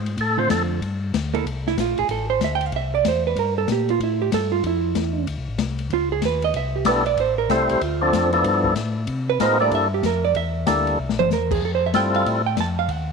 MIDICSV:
0, 0, Header, 1, 5, 480
1, 0, Start_track
1, 0, Tempo, 317965
1, 264, Time_signature, 4, 2, 24, 8
1, 19812, End_track
2, 0, Start_track
2, 0, Title_t, "Hollow-body jazz guitar"
2, 0, Program_c, 0, 26
2, 564, Note_on_c, 0, 50, 69
2, 576, Note_on_c, 0, 60, 65
2, 579, Note_on_c, 0, 65, 77
2, 583, Note_on_c, 0, 69, 78
2, 1189, Note_off_c, 0, 50, 0
2, 1194, Note_off_c, 0, 60, 0
2, 1196, Note_off_c, 0, 65, 0
2, 1198, Note_off_c, 0, 69, 0
2, 2017, Note_on_c, 0, 58, 73
2, 2023, Note_on_c, 0, 64, 79
2, 2033, Note_on_c, 0, 69, 81
2, 2173, Note_off_c, 0, 58, 0
2, 2176, Note_off_c, 0, 64, 0
2, 2181, Note_off_c, 0, 69, 0
2, 2531, Note_on_c, 0, 64, 82
2, 2683, Note_off_c, 0, 64, 0
2, 2718, Note_on_c, 0, 65, 75
2, 2992, Note_off_c, 0, 65, 0
2, 3000, Note_on_c, 0, 68, 81
2, 3158, Note_off_c, 0, 68, 0
2, 3187, Note_on_c, 0, 69, 73
2, 3464, Note_off_c, 0, 69, 0
2, 3470, Note_on_c, 0, 72, 85
2, 3634, Note_off_c, 0, 72, 0
2, 3688, Note_on_c, 0, 76, 80
2, 3817, Note_off_c, 0, 76, 0
2, 3853, Note_on_c, 0, 79, 107
2, 4013, Note_off_c, 0, 79, 0
2, 4013, Note_on_c, 0, 77, 82
2, 4140, Note_off_c, 0, 77, 0
2, 4169, Note_on_c, 0, 76, 89
2, 4440, Note_off_c, 0, 76, 0
2, 4447, Note_on_c, 0, 74, 90
2, 4604, Note_off_c, 0, 74, 0
2, 4651, Note_on_c, 0, 72, 78
2, 4921, Note_off_c, 0, 72, 0
2, 4935, Note_on_c, 0, 71, 74
2, 5088, Note_off_c, 0, 71, 0
2, 5118, Note_on_c, 0, 70, 74
2, 5395, Note_off_c, 0, 70, 0
2, 5404, Note_on_c, 0, 69, 91
2, 5563, Note_off_c, 0, 69, 0
2, 5616, Note_on_c, 0, 67, 76
2, 5884, Note_off_c, 0, 67, 0
2, 5893, Note_on_c, 0, 65, 82
2, 6048, Note_off_c, 0, 65, 0
2, 6091, Note_on_c, 0, 64, 74
2, 6362, Note_off_c, 0, 64, 0
2, 6365, Note_on_c, 0, 67, 74
2, 6524, Note_off_c, 0, 67, 0
2, 6554, Note_on_c, 0, 69, 103
2, 6819, Note_on_c, 0, 65, 83
2, 6834, Note_off_c, 0, 69, 0
2, 6991, Note_off_c, 0, 65, 0
2, 7044, Note_on_c, 0, 64, 76
2, 7921, Note_off_c, 0, 64, 0
2, 8960, Note_on_c, 0, 65, 75
2, 9234, Note_off_c, 0, 65, 0
2, 9240, Note_on_c, 0, 68, 85
2, 9402, Note_off_c, 0, 68, 0
2, 9441, Note_on_c, 0, 71, 84
2, 9717, Note_off_c, 0, 71, 0
2, 9728, Note_on_c, 0, 75, 98
2, 9886, Note_off_c, 0, 75, 0
2, 9911, Note_on_c, 0, 76, 91
2, 10192, Note_off_c, 0, 76, 0
2, 10200, Note_on_c, 0, 67, 49
2, 10361, Note_off_c, 0, 67, 0
2, 10396, Note_on_c, 0, 71, 82
2, 10666, Note_on_c, 0, 74, 94
2, 10674, Note_off_c, 0, 71, 0
2, 10834, Note_off_c, 0, 74, 0
2, 10871, Note_on_c, 0, 72, 90
2, 11138, Note_off_c, 0, 72, 0
2, 11144, Note_on_c, 0, 70, 88
2, 11312, Note_off_c, 0, 70, 0
2, 11342, Note_on_c, 0, 69, 69
2, 11633, Note_off_c, 0, 69, 0
2, 11633, Note_on_c, 0, 67, 90
2, 11829, Note_off_c, 0, 67, 0
2, 11829, Note_on_c, 0, 65, 81
2, 12597, Note_off_c, 0, 65, 0
2, 14033, Note_on_c, 0, 71, 97
2, 14195, Note_off_c, 0, 71, 0
2, 14228, Note_on_c, 0, 72, 86
2, 14507, Note_off_c, 0, 72, 0
2, 14519, Note_on_c, 0, 74, 106
2, 14677, Note_off_c, 0, 74, 0
2, 14717, Note_on_c, 0, 76, 102
2, 14990, Note_off_c, 0, 76, 0
2, 15009, Note_on_c, 0, 67, 76
2, 15162, Note_off_c, 0, 67, 0
2, 15187, Note_on_c, 0, 70, 88
2, 15465, Note_off_c, 0, 70, 0
2, 15468, Note_on_c, 0, 74, 98
2, 15630, Note_off_c, 0, 74, 0
2, 15647, Note_on_c, 0, 76, 103
2, 16084, Note_off_c, 0, 76, 0
2, 16894, Note_on_c, 0, 72, 94
2, 17062, Note_off_c, 0, 72, 0
2, 17102, Note_on_c, 0, 70, 77
2, 17381, Note_off_c, 0, 70, 0
2, 17383, Note_on_c, 0, 68, 84
2, 17547, Note_off_c, 0, 68, 0
2, 17589, Note_on_c, 0, 69, 75
2, 17723, Note_off_c, 0, 69, 0
2, 17735, Note_on_c, 0, 72, 85
2, 17876, Note_off_c, 0, 72, 0
2, 17909, Note_on_c, 0, 76, 84
2, 18043, Note_off_c, 0, 76, 0
2, 18059, Note_on_c, 0, 79, 102
2, 18339, Note_off_c, 0, 79, 0
2, 18353, Note_on_c, 0, 77, 97
2, 18540, Note_off_c, 0, 77, 0
2, 18540, Note_on_c, 0, 76, 81
2, 18810, Note_off_c, 0, 76, 0
2, 18816, Note_on_c, 0, 79, 84
2, 18982, Note_off_c, 0, 79, 0
2, 19029, Note_on_c, 0, 81, 98
2, 19300, Note_off_c, 0, 81, 0
2, 19306, Note_on_c, 0, 77, 96
2, 19504, Note_off_c, 0, 77, 0
2, 19504, Note_on_c, 0, 78, 99
2, 19812, Note_off_c, 0, 78, 0
2, 19812, End_track
3, 0, Start_track
3, 0, Title_t, "Tonewheel organ"
3, 0, Program_c, 1, 16
3, 314, Note_on_c, 1, 69, 92
3, 579, Note_on_c, 1, 72, 109
3, 587, Note_off_c, 1, 69, 0
3, 744, Note_off_c, 1, 72, 0
3, 770, Note_on_c, 1, 69, 98
3, 946, Note_off_c, 1, 69, 0
3, 10358, Note_on_c, 1, 62, 60
3, 10360, Note_on_c, 1, 64, 67
3, 10361, Note_on_c, 1, 69, 75
3, 10362, Note_on_c, 1, 59, 64
3, 10366, Note_on_c, 1, 55, 71
3, 10633, Note_off_c, 1, 62, 0
3, 10634, Note_off_c, 1, 64, 0
3, 10635, Note_off_c, 1, 59, 0
3, 10635, Note_off_c, 1, 69, 0
3, 10637, Note_off_c, 1, 55, 0
3, 11319, Note_on_c, 1, 55, 62
3, 11321, Note_on_c, 1, 57, 64
3, 11326, Note_on_c, 1, 60, 64
3, 11335, Note_on_c, 1, 64, 64
3, 11335, Note_on_c, 1, 72, 74
3, 11798, Note_off_c, 1, 55, 0
3, 11798, Note_off_c, 1, 57, 0
3, 11801, Note_off_c, 1, 60, 0
3, 11805, Note_off_c, 1, 64, 0
3, 11805, Note_off_c, 1, 72, 0
3, 12098, Note_on_c, 1, 62, 65
3, 12103, Note_on_c, 1, 60, 64
3, 12106, Note_on_c, 1, 53, 70
3, 12113, Note_on_c, 1, 69, 80
3, 12548, Note_off_c, 1, 62, 0
3, 12551, Note_off_c, 1, 60, 0
3, 12553, Note_off_c, 1, 53, 0
3, 12556, Note_off_c, 1, 69, 0
3, 12570, Note_on_c, 1, 62, 67
3, 12574, Note_on_c, 1, 53, 80
3, 12574, Note_on_c, 1, 59, 67
3, 12581, Note_on_c, 1, 64, 75
3, 12586, Note_on_c, 1, 69, 84
3, 13194, Note_off_c, 1, 62, 0
3, 13196, Note_off_c, 1, 53, 0
3, 13196, Note_off_c, 1, 59, 0
3, 13199, Note_off_c, 1, 64, 0
3, 13202, Note_off_c, 1, 69, 0
3, 14193, Note_on_c, 1, 56, 73
3, 14194, Note_on_c, 1, 59, 57
3, 14200, Note_on_c, 1, 63, 67
3, 14203, Note_on_c, 1, 65, 66
3, 14203, Note_on_c, 1, 70, 71
3, 14467, Note_off_c, 1, 56, 0
3, 14468, Note_off_c, 1, 59, 0
3, 14471, Note_off_c, 1, 63, 0
3, 14472, Note_off_c, 1, 65, 0
3, 14472, Note_off_c, 1, 70, 0
3, 14494, Note_on_c, 1, 62, 66
3, 14497, Note_on_c, 1, 55, 74
3, 14499, Note_on_c, 1, 58, 66
3, 14500, Note_on_c, 1, 64, 65
3, 14503, Note_on_c, 1, 69, 82
3, 14914, Note_off_c, 1, 62, 0
3, 14915, Note_off_c, 1, 55, 0
3, 14916, Note_off_c, 1, 58, 0
3, 14917, Note_off_c, 1, 64, 0
3, 14918, Note_off_c, 1, 69, 0
3, 16102, Note_on_c, 1, 55, 64
3, 16110, Note_on_c, 1, 62, 52
3, 16116, Note_on_c, 1, 58, 52
3, 16116, Note_on_c, 1, 64, 55
3, 16117, Note_on_c, 1, 69, 76
3, 16584, Note_off_c, 1, 55, 0
3, 16588, Note_off_c, 1, 62, 0
3, 16591, Note_off_c, 1, 58, 0
3, 16591, Note_off_c, 1, 64, 0
3, 16592, Note_off_c, 1, 69, 0
3, 18031, Note_on_c, 1, 64, 59
3, 18032, Note_on_c, 1, 60, 53
3, 18032, Note_on_c, 1, 65, 54
3, 18034, Note_on_c, 1, 69, 70
3, 18035, Note_on_c, 1, 55, 63
3, 18752, Note_off_c, 1, 60, 0
3, 18752, Note_off_c, 1, 64, 0
3, 18752, Note_off_c, 1, 65, 0
3, 18753, Note_off_c, 1, 69, 0
3, 18754, Note_off_c, 1, 55, 0
3, 19812, End_track
4, 0, Start_track
4, 0, Title_t, "Tonewheel organ"
4, 0, Program_c, 2, 16
4, 0, Note_on_c, 2, 44, 90
4, 248, Note_off_c, 2, 44, 0
4, 260, Note_on_c, 2, 45, 82
4, 729, Note_off_c, 2, 45, 0
4, 747, Note_on_c, 2, 41, 90
4, 1213, Note_off_c, 2, 41, 0
4, 1229, Note_on_c, 2, 43, 85
4, 1695, Note_off_c, 2, 43, 0
4, 1715, Note_on_c, 2, 38, 96
4, 2179, Note_off_c, 2, 38, 0
4, 2195, Note_on_c, 2, 36, 73
4, 2659, Note_off_c, 2, 36, 0
4, 2670, Note_on_c, 2, 34, 92
4, 2955, Note_off_c, 2, 34, 0
4, 2996, Note_on_c, 2, 34, 42
4, 3079, Note_off_c, 2, 34, 0
4, 3149, Note_on_c, 2, 33, 84
4, 3617, Note_off_c, 2, 33, 0
4, 3632, Note_on_c, 2, 38, 90
4, 4099, Note_off_c, 2, 38, 0
4, 4110, Note_on_c, 2, 36, 83
4, 4579, Note_off_c, 2, 36, 0
4, 4597, Note_on_c, 2, 40, 93
4, 5063, Note_off_c, 2, 40, 0
4, 5065, Note_on_c, 2, 43, 76
4, 5537, Note_off_c, 2, 43, 0
4, 5554, Note_on_c, 2, 46, 93
4, 6022, Note_off_c, 2, 46, 0
4, 6034, Note_on_c, 2, 45, 81
4, 6502, Note_off_c, 2, 45, 0
4, 6518, Note_on_c, 2, 43, 87
4, 6984, Note_off_c, 2, 43, 0
4, 7002, Note_on_c, 2, 41, 87
4, 7466, Note_off_c, 2, 41, 0
4, 7475, Note_on_c, 2, 40, 89
4, 7943, Note_off_c, 2, 40, 0
4, 7953, Note_on_c, 2, 38, 90
4, 8111, Note_off_c, 2, 38, 0
4, 8121, Note_on_c, 2, 36, 50
4, 8274, Note_on_c, 2, 33, 59
4, 8280, Note_off_c, 2, 36, 0
4, 8425, Note_off_c, 2, 33, 0
4, 8427, Note_on_c, 2, 36, 93
4, 8898, Note_off_c, 2, 36, 0
4, 8911, Note_on_c, 2, 37, 80
4, 9381, Note_off_c, 2, 37, 0
4, 9391, Note_on_c, 2, 39, 99
4, 9860, Note_off_c, 2, 39, 0
4, 9866, Note_on_c, 2, 36, 91
4, 10337, Note_off_c, 2, 36, 0
4, 10340, Note_on_c, 2, 35, 86
4, 10814, Note_off_c, 2, 35, 0
4, 10827, Note_on_c, 2, 33, 83
4, 11297, Note_off_c, 2, 33, 0
4, 11310, Note_on_c, 2, 36, 92
4, 11597, Note_off_c, 2, 36, 0
4, 11628, Note_on_c, 2, 36, 38
4, 11714, Note_off_c, 2, 36, 0
4, 11786, Note_on_c, 2, 38, 90
4, 12256, Note_off_c, 2, 38, 0
4, 12270, Note_on_c, 2, 41, 98
4, 12738, Note_off_c, 2, 41, 0
4, 12743, Note_on_c, 2, 43, 92
4, 13211, Note_on_c, 2, 45, 96
4, 13214, Note_off_c, 2, 43, 0
4, 13687, Note_off_c, 2, 45, 0
4, 13699, Note_on_c, 2, 48, 89
4, 14171, Note_off_c, 2, 48, 0
4, 14183, Note_on_c, 2, 45, 88
4, 14652, Note_off_c, 2, 45, 0
4, 14663, Note_on_c, 2, 43, 90
4, 15131, Note_off_c, 2, 43, 0
4, 15140, Note_on_c, 2, 41, 91
4, 15610, Note_off_c, 2, 41, 0
4, 15621, Note_on_c, 2, 40, 90
4, 16090, Note_off_c, 2, 40, 0
4, 16095, Note_on_c, 2, 38, 96
4, 16566, Note_off_c, 2, 38, 0
4, 16582, Note_on_c, 2, 36, 82
4, 16740, Note_off_c, 2, 36, 0
4, 16747, Note_on_c, 2, 34, 65
4, 16907, Note_off_c, 2, 34, 0
4, 16921, Note_on_c, 2, 31, 75
4, 17063, Note_off_c, 2, 31, 0
4, 17065, Note_on_c, 2, 40, 107
4, 17531, Note_off_c, 2, 40, 0
4, 17543, Note_on_c, 2, 41, 82
4, 18009, Note_off_c, 2, 41, 0
4, 18020, Note_on_c, 2, 43, 95
4, 18487, Note_off_c, 2, 43, 0
4, 18506, Note_on_c, 2, 45, 84
4, 18971, Note_off_c, 2, 45, 0
4, 18980, Note_on_c, 2, 41, 93
4, 19444, Note_on_c, 2, 39, 85
4, 19447, Note_off_c, 2, 41, 0
4, 19812, Note_off_c, 2, 39, 0
4, 19812, End_track
5, 0, Start_track
5, 0, Title_t, "Drums"
5, 94, Note_on_c, 9, 51, 52
5, 245, Note_off_c, 9, 51, 0
5, 264, Note_on_c, 9, 36, 23
5, 266, Note_on_c, 9, 51, 66
5, 415, Note_off_c, 9, 36, 0
5, 417, Note_off_c, 9, 51, 0
5, 748, Note_on_c, 9, 36, 20
5, 754, Note_on_c, 9, 38, 88
5, 754, Note_on_c, 9, 44, 61
5, 754, Note_on_c, 9, 51, 78
5, 899, Note_off_c, 9, 36, 0
5, 905, Note_off_c, 9, 38, 0
5, 905, Note_off_c, 9, 44, 0
5, 905, Note_off_c, 9, 51, 0
5, 1233, Note_on_c, 9, 36, 22
5, 1240, Note_on_c, 9, 51, 65
5, 1384, Note_off_c, 9, 36, 0
5, 1391, Note_off_c, 9, 51, 0
5, 1718, Note_on_c, 9, 36, 20
5, 1721, Note_on_c, 9, 38, 79
5, 1721, Note_on_c, 9, 44, 53
5, 1721, Note_on_c, 9, 51, 77
5, 1869, Note_off_c, 9, 36, 0
5, 1872, Note_off_c, 9, 38, 0
5, 1872, Note_off_c, 9, 44, 0
5, 1872, Note_off_c, 9, 51, 0
5, 2030, Note_on_c, 9, 51, 55
5, 2181, Note_off_c, 9, 51, 0
5, 2201, Note_on_c, 9, 36, 17
5, 2214, Note_on_c, 9, 51, 65
5, 2352, Note_off_c, 9, 36, 0
5, 2365, Note_off_c, 9, 51, 0
5, 2516, Note_on_c, 9, 38, 41
5, 2667, Note_off_c, 9, 38, 0
5, 2678, Note_on_c, 9, 36, 24
5, 2684, Note_on_c, 9, 38, 69
5, 2684, Note_on_c, 9, 44, 65
5, 2684, Note_on_c, 9, 51, 76
5, 2829, Note_off_c, 9, 36, 0
5, 2835, Note_off_c, 9, 38, 0
5, 2835, Note_off_c, 9, 44, 0
5, 2835, Note_off_c, 9, 51, 0
5, 2983, Note_on_c, 9, 51, 45
5, 3134, Note_off_c, 9, 51, 0
5, 3151, Note_on_c, 9, 51, 62
5, 3154, Note_on_c, 9, 36, 20
5, 3302, Note_off_c, 9, 51, 0
5, 3305, Note_off_c, 9, 36, 0
5, 3635, Note_on_c, 9, 38, 64
5, 3635, Note_on_c, 9, 44, 65
5, 3635, Note_on_c, 9, 51, 63
5, 3636, Note_on_c, 9, 36, 24
5, 3785, Note_off_c, 9, 38, 0
5, 3785, Note_off_c, 9, 44, 0
5, 3785, Note_off_c, 9, 51, 0
5, 3787, Note_off_c, 9, 36, 0
5, 3936, Note_on_c, 9, 51, 54
5, 4087, Note_off_c, 9, 51, 0
5, 4107, Note_on_c, 9, 51, 54
5, 4114, Note_on_c, 9, 36, 25
5, 4258, Note_off_c, 9, 51, 0
5, 4264, Note_off_c, 9, 36, 0
5, 4597, Note_on_c, 9, 36, 21
5, 4601, Note_on_c, 9, 38, 79
5, 4601, Note_on_c, 9, 44, 69
5, 4601, Note_on_c, 9, 51, 78
5, 4748, Note_off_c, 9, 36, 0
5, 4752, Note_off_c, 9, 38, 0
5, 4752, Note_off_c, 9, 44, 0
5, 4752, Note_off_c, 9, 51, 0
5, 5075, Note_on_c, 9, 36, 25
5, 5077, Note_on_c, 9, 51, 59
5, 5226, Note_off_c, 9, 36, 0
5, 5228, Note_off_c, 9, 51, 0
5, 5552, Note_on_c, 9, 38, 67
5, 5552, Note_on_c, 9, 44, 67
5, 5552, Note_on_c, 9, 51, 62
5, 5556, Note_on_c, 9, 36, 19
5, 5703, Note_off_c, 9, 38, 0
5, 5703, Note_off_c, 9, 44, 0
5, 5703, Note_off_c, 9, 51, 0
5, 5707, Note_off_c, 9, 36, 0
5, 5868, Note_on_c, 9, 51, 48
5, 6019, Note_off_c, 9, 51, 0
5, 6040, Note_on_c, 9, 36, 21
5, 6045, Note_on_c, 9, 51, 60
5, 6191, Note_off_c, 9, 36, 0
5, 6196, Note_off_c, 9, 51, 0
5, 6521, Note_on_c, 9, 36, 31
5, 6522, Note_on_c, 9, 38, 80
5, 6522, Note_on_c, 9, 44, 61
5, 6522, Note_on_c, 9, 51, 85
5, 6672, Note_off_c, 9, 36, 0
5, 6673, Note_off_c, 9, 38, 0
5, 6673, Note_off_c, 9, 44, 0
5, 6673, Note_off_c, 9, 51, 0
5, 6999, Note_on_c, 9, 51, 60
5, 7003, Note_on_c, 9, 36, 19
5, 7150, Note_off_c, 9, 51, 0
5, 7154, Note_off_c, 9, 36, 0
5, 7474, Note_on_c, 9, 38, 72
5, 7474, Note_on_c, 9, 44, 58
5, 7474, Note_on_c, 9, 51, 64
5, 7480, Note_on_c, 9, 36, 22
5, 7625, Note_off_c, 9, 38, 0
5, 7625, Note_off_c, 9, 44, 0
5, 7625, Note_off_c, 9, 51, 0
5, 7631, Note_off_c, 9, 36, 0
5, 7958, Note_on_c, 9, 51, 69
5, 7959, Note_on_c, 9, 36, 19
5, 8109, Note_off_c, 9, 51, 0
5, 8110, Note_off_c, 9, 36, 0
5, 8431, Note_on_c, 9, 38, 83
5, 8431, Note_on_c, 9, 44, 61
5, 8431, Note_on_c, 9, 51, 76
5, 8436, Note_on_c, 9, 36, 26
5, 8582, Note_off_c, 9, 38, 0
5, 8582, Note_off_c, 9, 44, 0
5, 8582, Note_off_c, 9, 51, 0
5, 8587, Note_off_c, 9, 36, 0
5, 8735, Note_on_c, 9, 51, 49
5, 8886, Note_off_c, 9, 51, 0
5, 8911, Note_on_c, 9, 51, 56
5, 8913, Note_on_c, 9, 36, 28
5, 9062, Note_off_c, 9, 51, 0
5, 9064, Note_off_c, 9, 36, 0
5, 9386, Note_on_c, 9, 38, 63
5, 9386, Note_on_c, 9, 44, 56
5, 9386, Note_on_c, 9, 51, 74
5, 9392, Note_on_c, 9, 36, 23
5, 9537, Note_off_c, 9, 38, 0
5, 9537, Note_off_c, 9, 44, 0
5, 9537, Note_off_c, 9, 51, 0
5, 9543, Note_off_c, 9, 36, 0
5, 9694, Note_on_c, 9, 51, 54
5, 9845, Note_off_c, 9, 51, 0
5, 9870, Note_on_c, 9, 51, 59
5, 9871, Note_on_c, 9, 36, 20
5, 10021, Note_off_c, 9, 36, 0
5, 10021, Note_off_c, 9, 51, 0
5, 10340, Note_on_c, 9, 38, 78
5, 10340, Note_on_c, 9, 44, 71
5, 10340, Note_on_c, 9, 51, 87
5, 10351, Note_on_c, 9, 36, 23
5, 10491, Note_off_c, 9, 38, 0
5, 10491, Note_off_c, 9, 44, 0
5, 10491, Note_off_c, 9, 51, 0
5, 10502, Note_off_c, 9, 36, 0
5, 10654, Note_on_c, 9, 51, 48
5, 10805, Note_off_c, 9, 51, 0
5, 10830, Note_on_c, 9, 51, 64
5, 10834, Note_on_c, 9, 36, 26
5, 10981, Note_off_c, 9, 51, 0
5, 10985, Note_off_c, 9, 36, 0
5, 11315, Note_on_c, 9, 36, 24
5, 11316, Note_on_c, 9, 38, 68
5, 11316, Note_on_c, 9, 44, 53
5, 11316, Note_on_c, 9, 51, 66
5, 11466, Note_off_c, 9, 36, 0
5, 11467, Note_off_c, 9, 38, 0
5, 11467, Note_off_c, 9, 44, 0
5, 11467, Note_off_c, 9, 51, 0
5, 11613, Note_on_c, 9, 51, 58
5, 11764, Note_off_c, 9, 51, 0
5, 11792, Note_on_c, 9, 36, 19
5, 11794, Note_on_c, 9, 51, 64
5, 11943, Note_off_c, 9, 36, 0
5, 11945, Note_off_c, 9, 51, 0
5, 12271, Note_on_c, 9, 36, 28
5, 12275, Note_on_c, 9, 38, 77
5, 12275, Note_on_c, 9, 44, 69
5, 12275, Note_on_c, 9, 51, 71
5, 12422, Note_off_c, 9, 36, 0
5, 12426, Note_off_c, 9, 38, 0
5, 12426, Note_off_c, 9, 44, 0
5, 12426, Note_off_c, 9, 51, 0
5, 12568, Note_on_c, 9, 51, 52
5, 12719, Note_off_c, 9, 51, 0
5, 12744, Note_on_c, 9, 51, 70
5, 12745, Note_on_c, 9, 36, 23
5, 12895, Note_off_c, 9, 51, 0
5, 12896, Note_off_c, 9, 36, 0
5, 13048, Note_on_c, 9, 36, 51
5, 13199, Note_off_c, 9, 36, 0
5, 13218, Note_on_c, 9, 38, 68
5, 13218, Note_on_c, 9, 44, 58
5, 13218, Note_on_c, 9, 51, 70
5, 13223, Note_on_c, 9, 36, 26
5, 13369, Note_off_c, 9, 38, 0
5, 13369, Note_off_c, 9, 44, 0
5, 13369, Note_off_c, 9, 51, 0
5, 13374, Note_off_c, 9, 36, 0
5, 13693, Note_on_c, 9, 51, 68
5, 13702, Note_on_c, 9, 36, 22
5, 13844, Note_off_c, 9, 51, 0
5, 13853, Note_off_c, 9, 36, 0
5, 14186, Note_on_c, 9, 36, 28
5, 14188, Note_on_c, 9, 38, 88
5, 14188, Note_on_c, 9, 44, 64
5, 14188, Note_on_c, 9, 51, 84
5, 14337, Note_off_c, 9, 36, 0
5, 14339, Note_off_c, 9, 38, 0
5, 14339, Note_off_c, 9, 44, 0
5, 14339, Note_off_c, 9, 51, 0
5, 14665, Note_on_c, 9, 51, 65
5, 14666, Note_on_c, 9, 36, 26
5, 14816, Note_off_c, 9, 51, 0
5, 14817, Note_off_c, 9, 36, 0
5, 15144, Note_on_c, 9, 36, 18
5, 15146, Note_on_c, 9, 38, 66
5, 15146, Note_on_c, 9, 44, 52
5, 15146, Note_on_c, 9, 51, 66
5, 15295, Note_off_c, 9, 36, 0
5, 15296, Note_off_c, 9, 38, 0
5, 15296, Note_off_c, 9, 44, 0
5, 15296, Note_off_c, 9, 51, 0
5, 15620, Note_on_c, 9, 51, 63
5, 15623, Note_on_c, 9, 36, 28
5, 15770, Note_off_c, 9, 51, 0
5, 15774, Note_off_c, 9, 36, 0
5, 16102, Note_on_c, 9, 38, 83
5, 16102, Note_on_c, 9, 44, 72
5, 16102, Note_on_c, 9, 51, 80
5, 16104, Note_on_c, 9, 36, 25
5, 16253, Note_off_c, 9, 38, 0
5, 16253, Note_off_c, 9, 44, 0
5, 16253, Note_off_c, 9, 51, 0
5, 16255, Note_off_c, 9, 36, 0
5, 16409, Note_on_c, 9, 51, 53
5, 16560, Note_off_c, 9, 51, 0
5, 16746, Note_on_c, 9, 38, 72
5, 16897, Note_off_c, 9, 38, 0
5, 16905, Note_on_c, 9, 47, 87
5, 17056, Note_off_c, 9, 47, 0
5, 17068, Note_on_c, 9, 38, 58
5, 17068, Note_on_c, 9, 44, 55
5, 17219, Note_off_c, 9, 38, 0
5, 17219, Note_off_c, 9, 44, 0
5, 17373, Note_on_c, 9, 36, 77
5, 17379, Note_on_c, 9, 49, 90
5, 17524, Note_off_c, 9, 36, 0
5, 17529, Note_off_c, 9, 49, 0
5, 17544, Note_on_c, 9, 36, 24
5, 17695, Note_off_c, 9, 36, 0
5, 18020, Note_on_c, 9, 38, 84
5, 18020, Note_on_c, 9, 44, 60
5, 18020, Note_on_c, 9, 51, 74
5, 18023, Note_on_c, 9, 36, 20
5, 18171, Note_off_c, 9, 38, 0
5, 18171, Note_off_c, 9, 44, 0
5, 18171, Note_off_c, 9, 51, 0
5, 18173, Note_off_c, 9, 36, 0
5, 18333, Note_on_c, 9, 51, 48
5, 18484, Note_off_c, 9, 51, 0
5, 18503, Note_on_c, 9, 36, 19
5, 18511, Note_on_c, 9, 51, 64
5, 18654, Note_off_c, 9, 36, 0
5, 18662, Note_off_c, 9, 51, 0
5, 18972, Note_on_c, 9, 38, 73
5, 18972, Note_on_c, 9, 44, 62
5, 18972, Note_on_c, 9, 51, 71
5, 18979, Note_on_c, 9, 36, 17
5, 19123, Note_off_c, 9, 38, 0
5, 19123, Note_off_c, 9, 44, 0
5, 19123, Note_off_c, 9, 51, 0
5, 19130, Note_off_c, 9, 36, 0
5, 19452, Note_on_c, 9, 51, 58
5, 19455, Note_on_c, 9, 36, 26
5, 19603, Note_off_c, 9, 51, 0
5, 19606, Note_off_c, 9, 36, 0
5, 19812, End_track
0, 0, End_of_file